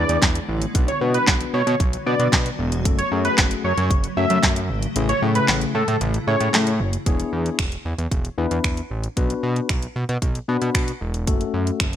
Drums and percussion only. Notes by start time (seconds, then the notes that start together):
0.09 closed hi-hat
0.22 kick, snare, clap, closed hi-hat
0.35 closed hi-hat
0.62 closed hi-hat
0.75 kick, closed hi-hat
0.88 closed hi-hat
1.14 closed hi-hat
1.27 kick, snare, clap, closed hi-hat
1.41 closed hi-hat
1.67 closed hi-hat
1.80 kick, closed hi-hat
1.93 closed hi-hat
2.20 closed hi-hat
2.33 kick, snare, clap, closed hi-hat
2.46 closed hi-hat
2.72 closed hi-hat
2.85 kick, closed hi-hat
2.99 closed hi-hat
3.25 closed hi-hat
3.38 kick, snare, clap, closed hi-hat
3.51 closed hi-hat
3.78 closed hi-hat
3.90 kick, closed hi-hat
4.04 closed hi-hat
4.30 closed hi-hat
4.43 kick, snare, clap, closed hi-hat
4.56 closed hi-hat
4.83 closed hi-hat
4.96 closed hi-hat
5.09 closed hi-hat
5.35 closed hi-hat
5.48 snare, clap, closed hi-hat
5.61 closed hi-hat
5.88 closed hi-hat
6.01 closed hi-hat
6.14 closed hi-hat
6.41 closed hi-hat
6.54 snare, clap, closed hi-hat
6.67 closed hi-hat
6.93 closed hi-hat
7.06 kick, closed hi-hat
7.20 closed hi-hat
7.46 closed hi-hat
7.59 finger snap, kick, closed hi-hat
7.72 closed hi-hat
7.99 closed hi-hat
8.11 kick, closed hi-hat
8.25 closed hi-hat
8.51 closed hi-hat
8.64 finger snap, kick, closed hi-hat
8.77 closed hi-hat
9.04 closed hi-hat
9.17 kick, closed hi-hat
9.30 closed hi-hat
9.56 closed hi-hat
9.69 finger snap, kick, closed hi-hat
9.82 closed hi-hat
10.09 closed hi-hat
10.22 kick, closed hi-hat
10.35 closed hi-hat
10.62 closed hi-hat
10.75 finger snap, kick, closed hi-hat
10.88 closed hi-hat
11.14 closed hi-hat
11.27 kick, closed hi-hat
11.41 closed hi-hat
11.67 closed hi-hat
11.80 finger snap, kick, closed hi-hat